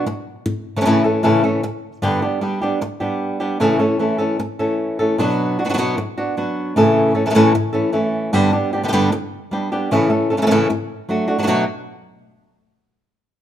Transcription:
0.06 muted nylon-string guitar stroke
0.46 muted nylon-string guitar stroke
0.76 nylon-string guitar C#3 E3 A3 C#4 A4
0.81 nylon-string guitar C#3 E3 A3 C#4 A4
0.85 nylon-string guitar A2 C#3 E3 A3 C#4 A4
1.04 nylon-string guitar E3 A3 C#4 A4
1.23 nylon-string guitar A2 C#3 E3 A3 C#4 A4
1.44 nylon-string guitar E3 A3 C#4 A4
1.63 muted nylon-string guitar stroke
2.02 nylon-string guitar G2 D3 G3 B3 D4 G4
2.22 nylon-string guitar G3 B3 D4 G4
2.41 nylon-string guitar G3 B3 D4 G4
2.62 nylon-string guitar G3 B3 D4 G4
2.81 muted nylon-string guitar stroke
3.00 nylon-string guitar G3 B3 D4 G4
3.40 nylon-string guitar G3 B3 D4 G4
3.60 nylon-string guitar A2 C#3 E3 A3 C#4 A4
3.79 nylon-string guitar E3 A3 C#4 A4
3.99 nylon-string guitar E3 A3 C#4 A4
4.18 nylon-string guitar E3 A3 C#4 A4
4.39 muted nylon-string guitar stroke
4.59 nylon-string guitar E3 A3 C#4 A4
4.99 nylon-string guitar E3 A3 C#4 A4
5.18 nylon-string guitar B2 F#3 B3 D4 F#4
5.59 nylon-string guitar B3 D4 F#4
5.64 nylon-string guitar F#3 B3 D4 F#4
5.69 nylon-string guitar F#3 B3 D4 F#4
5.74 nylon-string guitar B2 F#3 B3 D4 F#4
5.78 nylon-string guitar F#3 B3 D4 F#4
5.97 muted nylon-string guitar stroke
6.18 nylon-string guitar B3 D4 F#4
6.37 nylon-string guitar F#3 B3 D4 F#4
6.76 nylon-string guitar A2 C#3 E3 A3 C#4 A4
7.15 nylon-string guitar E3 A3 C#4 A4
7.26 nylon-string guitar C#3 E3 A3 C#4 A4
7.30 nylon-string guitar C#3 E3 A3 C#4 A4
7.35 nylon-string guitar A2 C#3 E3 A3 C#4 A4
7.55 muted nylon-string guitar stroke
7.73 nylon-string guitar E3 A3 C#4 A4
7.93 nylon-string guitar E3 A3 C#4 A4
8.33 nylon-string guitar G2 D3 G3 B3 D4 G4
8.53 nylon-string guitar G3 B3 D4 G4
8.73 nylon-string guitar G3 B3 D4 G4
8.83 nylon-string guitar D3 G3 B3 D4 G4
8.88 nylon-string guitar D3 G3 B3 D4 G4
8.93 nylon-string guitar G2 D3 G3 B3 D4 G4
9.12 muted nylon-string guitar stroke
9.51 nylon-string guitar G3 B3 D4 G4
9.72 nylon-string guitar G3 B3 D4 G4
9.91 nylon-string guitar A2 C#3 E3 A3 C#4 A4
10.10 nylon-string guitar E3 A3 C#4 A4
10.30 nylon-string guitar E3 A3 C#4 A4
10.37 nylon-string guitar C#3 E3 A3 C#4 A4
10.42 nylon-string guitar C#3 E3 A3 C#4 A4
10.47 nylon-string guitar C#3 E3 A3 C#4 A4
10.51 nylon-string guitar A2 C#3 E3 A3 C#4 A4
10.70 muted nylon-string guitar stroke
11.09 nylon-string guitar F#3 A3 D4 F#4
11.28 nylon-string guitar A3 D4 F#4
11.38 nylon-string guitar F#3 A3 D4 F#4
11.43 nylon-string guitar F#3 A3 D4 F#4
11.47 nylon-string guitar B2 F#3 A3 D4 F#4

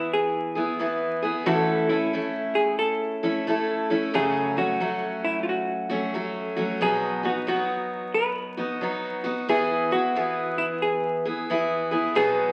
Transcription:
Already playing: steel-string acoustic guitar E3 B3 E4 G#4, hollow-body jazz guitar E4
0.13 hollow-body jazz guitar G#4
0.55 steel-string acoustic guitar B3 E4 G#4
0.79 steel-string acoustic guitar E3 B3 E4 G#4
1.22 steel-string acoustic guitar B3 E4 G#4
1.46 steel-string acoustic guitar A2 E3 A3 C#4 E4 A4, hollow-body jazz guitar F#4
1.89 steel-string acoustic guitar A3 C#4 E4 A4, hollow-body jazz guitar E4
2.13 steel-string acoustic guitar A3 C#4 E4
2.55 hollow-body jazz guitar G#4
2.79 hollow-body jazz guitar A4
3.23 steel-string acoustic guitar A3 C#4 E4 A4
3.47 steel-string acoustic guitar A3 C#4 E4 A4
3.90 steel-string acoustic guitar A3 C#4 E4 A4
4.14 steel-string acoustic guitar F#2 C#3 F#3 A3 C#4 F#4, hollow-body jazz guitar G#4
4.57 steel-string acoustic guitar F#3 A3 C#4 F#4, hollow-body jazz guitar F#4
4.80 steel-string acoustic guitar F#3 A3 C#4 F#4
5.24 hollow-body jazz guitar E4
5.43 hollow-body jazz guitar F4
5.49 hollow-body jazz guitar F#4
5.90 steel-string acoustic guitar F#3 A3 C#4 F#4
6.14 steel-string acoustic guitar F#3 A3 C#4 F#4
6.56 steel-string acoustic guitar F#3 A3 C#4 F#4
6.81 steel-string acoustic guitar B2 F#3 B3 D#4 F#4, hollow-body jazz guitar G#4
7.23 steel-string acoustic guitar B3 D#4 F#4, hollow-body jazz guitar F#4
7.47 steel-string acoustic guitar F#3 B3 D#4 F#4, hollow-body jazz guitar F#4
8.14 hollow-body jazz guitar B4
8.57 steel-string acoustic guitar B3 D#4 F#4
8.81 steel-string acoustic guitar F#3 B3 D#4 F#4
9.24 steel-string acoustic guitar B3 D#4 F#4
9.49 steel-string acoustic guitar E3 B3 E4 G#4, hollow-body jazz guitar G#4
9.91 steel-string acoustic guitar B3 E4 G#4, hollow-body jazz guitar F#4
10.15 steel-string acoustic guitar E3 B3 E4 G#4
10.58 hollow-body jazz guitar E4
10.82 hollow-body jazz guitar G#4
11.25 steel-string acoustic guitar B3 E4 G#4
11.50 steel-string acoustic guitar E3 B3 E4 G#4
11.91 steel-string acoustic guitar B3 E4 G#4
12.15 steel-string acoustic guitar B2 F#3 B3 D#4 F#4, hollow-body jazz guitar G#4

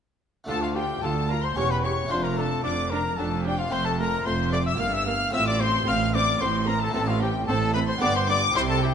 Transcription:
0.44 harpsichord A3 D4 F4, trumpet A4
0.48 double bass section D2, cello section D2, harpsichord D2, viola section F4, violin section A5
0.62 trumpet F4, violin section F5
0.75 viola section F4, trumpet G4, violin section G5
1.02 double bass section D2, cello section D2, harpsichord D2, viola section F4, trumpet A4, violin section A5
1.29 viola section F4, trumpet A#4, violin section A#5
1.43 trumpet C5, violin section C6
1.54 double bass section E1, cello section E2, harpsichord E2 C#4 G4, viola section G4, trumpet C#5, violin section C#6
1.71 trumpet B4, violin section B5
1.84 viola section G4, trumpet C#5, violin section C#6
2.06 harpsichord A3 D4 F4
2.11 double bass section F1, harpsichord F2, cello section F2, viola section D4, trumpet C5, violin section C6
2.24 trumpet A#4, violin section A#5
2.37 viola section D4, trumpet A4, violin section A5
2.63 double bass section F1, cello section F2, harpsichord F2, viola section D4, trumpet D5, violin section D6
2.90 viola section D4, trumpet A#4, violin section A#5
3.17 double bass section F1, harpsichord F2, cello section F2, viola section D4, trumpet A4, violin section A5
3.45 viola section D4, trumpet G4, violin section G5
3.58 trumpet F4, violin section F5
3.68 harpsichord A3 C4 F4
3.72 double bass section F1, cello section F2, harpsichord F2, viola section A3, trumpet C5, violin section C6
3.85 trumpet A4, violin section A5
3.99 viola section A3, trumpet A#4, violin section A#5
4.25 double bass section F1, harpsichord F2, cello section F2, viola section A3, trumpet C5, violin section C6
4.52 viola section A3, trumpet D5, violin section D6
4.66 trumpet E5, violin section E6
4.75 harpsichord A#3 E4, viola section A#3
4.79 double bass section G1, harpsichord G2, cello section G2, trumpet F5, violin section F6
4.93 trumpet E5, violin section E6
5.06 viola section A#3, trumpet F5, violin section F6
5.29 harpsichord A3 C4 F4
5.33 double bass section A1, harpsichord A2, cello section A2, viola section C4, trumpet E5, violin section E6
5.47 trumpet D5, violin section D6
5.60 viola section C4, trumpet C5, violin section C6
5.87 double bass section A1, harpsichord A2, cello section A2, viola section C4, trumpet F5, violin section F6
6.14 viola section C4, trumpet D5, violin section D6
6.40 double bass section A1, harpsichord A2, cello section A2, viola section C4, trumpet C5, violin section C6
6.68 viola section C4, trumpet A#4, violin section A#5
6.81 trumpet A4, violin section A5
6.90 harpsichord A3 C4 E4
6.94 double bass section A1, harpsichord A2, cello section A2, viola section C4, trumpet A4, violin section A5
7.08 trumpet F4, violin section F5
7.21 viola section C4, trumpet G4, violin section G5
7.48 double bass section A1, cello section A2, harpsichord A2, viola section C4, trumpet A4, violin section A5
7.74 viola section C4, trumpet B4, violin section B5
7.88 trumpet C5, violin section C6
7.98 double bass section G1, harpsichord B3 D4 G4
8.02 cello section G2, harpsichord G2, viola section B3, trumpet D5, violin section D6
8.16 trumpet C5, violin section C6
8.28 viola section B3, trumpet D5, violin section D6
8.51 harpsichord C4 E4 G4
8.55 double bass section C2, cello section C3, harpsichord C3, viola section E4, trumpet C5, violin section C6
8.69 trumpet A4, violin section A5
8.82 viola section E4, trumpet G4, violin section G5

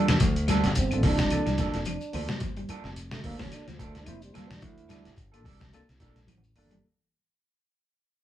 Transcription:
Already playing: clean electric guitar F3 A#3 D4 A4, reed electric piano A#3 D4 F4 A4, trombone D4
0.08 fingered electric bass E2, snare, closed hi-hat
0.20 fingered electric bass D2, clean electric guitar F3, kick, closed hi-hat, shekere
0.36 closed hi-hat
0.48 clean electric guitar G3 A#3 D4 A4, muted clean electric guitar stroke, snare, closed hi-hat, high conga, claves, shekere
0.64 fingered electric bass G1, snare, closed hi-hat, shekere
0.75 trombone C4, kick, closed hi-hat, shekere
0.91 reed electric piano A#3 D4 F4 A4, closed hi-hat, high conga, claves
1.03 fingered electric bass C2, clean electric guitar F3 A#3 A4, trombone D4, muted clean electric guitar stroke, kick, snare, open hi-hat, high conga, low conga, shekere
1.17 clean electric guitar F3, kick, snare, closed hi-hat, shekere
1.30 reed electric piano A#3 D4 F4 A4, closed hi-hat, low conga, claves, shekere
1.46 fingered electric bass C2, clean electric guitar G3, snare, closed hi-hat
1.58 clean electric guitar F3 A#3 D4 A4, reed electric piano A#3 D4 F4 A4, kick, snare, closed hi-hat, high conga, low conga, shekere
1.74 fingered electric bass F1, snare, closed hi-hat, high conga, shekere
1.85 clean electric guitar F3, trombone D4, closed hi-hat, claves, shekere
2.01 shekere
2.13 fingered electric bass D2, clean electric guitar F3 A#3 D4 A4, reed electric piano A#3 D4 F4 C5, open hi-hat, low conga, claves, shekere
2.29 clean electric guitar G3, snare, closed hi-hat, high conga
2.40 fingered electric bass G1, clean electric guitar F3, kick, closed hi-hat, shekere
2.57 clean electric guitar G3, closed hi-hat, high conga
2.69 clean electric guitar F3 A#3 D4 A4, closed hi-hat, high conga, claves, shekere
2.84 fingered electric bass F1, snare, shekere
2.96 closed hi-hat, shekere
3.11 clean electric guitar D3, trombone A3, snare, high conga, claves
3.24 fingered electric bass D2, clean electric guitar F3 A#3 D4 A4, trombone A#3, kick, open hi-hat, high conga, low conga, shekere
3.39 clean electric guitar E3, reed electric piano A#3 D4 F4 A4, trombone C#4, kick, snare, shekere
3.52 trombone D4, snare, closed hi-hat, claves, shekere
3.68 fingered electric bass D2, clean electric guitar F3, trombone F3, snare, closed hi-hat
3.78 clean electric guitar F3 A#3 D4 A4, trombone A3, kick, closed hi-hat, high conga, shekere
3.95 trombone D4, snare, closed hi-hat, high conga, shekere
4.06 fingered electric bass F1, clean electric guitar F3, reed electric piano A#3 D4 F4 C5, trombone E4, closed hi-hat, claves, shekere
4.22 trombone G3, closed hi-hat, shekere
4.34 clean electric guitar F3 G3 A#3 D4 A4, trombone A#3, snare, closed hi-hat, high conga, low conga, claves
4.50 fingered electric bass E2, trombone D4, snare, closed hi-hat, high conga
4.61 fingered electric bass D2, clean electric guitar F3, trombone E4, kick, closed hi-hat, shekere
4.78 closed hi-hat, high conga
4.88 clean electric guitar F3 G3 D4 A4, muted clean electric guitar stroke, snare, closed hi-hat, high conga, claves, shekere
5.05 fingered electric bass G1, snare, closed hi-hat, shekere
5.16 kick, closed hi-hat, shekere
5.32 clean electric guitar A#3 D4 A4, reed electric piano A#3 D4 F4 A4, closed hi-hat, claves
5.44 fingered electric bass C2, clean electric guitar A#3 D4 A4, kick, snare, open hi-hat, high conga, low conga, shekere
5.60 clean electric guitar F3, kick, snare, closed hi-hat, shekere
5.73 reed electric piano A#3 D4 F4 A4, closed hi-hat, claves, shekere
5.89 fingered electric bass C2, snare, closed hi-hat
5.99 fingered electric bass A#1, clean electric guitar F3 A#3 D4 A4, reed electric piano A#3 D4 F4 A4, kick, snare, closed hi-hat, high conga, shekere
6.11 high conga
6.16 snare, closed hi-hat, high conga, shekere
6.27 fingered electric bass A1, clean electric guitar F3, closed hi-hat, high conga, claves, shekere
6.37 low conga
6.44 shekere
6.56 fingered electric bass G1, clean electric guitar A#3 D4, reed electric piano A#3 D4 F4 A4, open hi-hat, claves, shekere
6.66 low conga
6.71 clean electric guitar G3, closed hi-hat, low conga

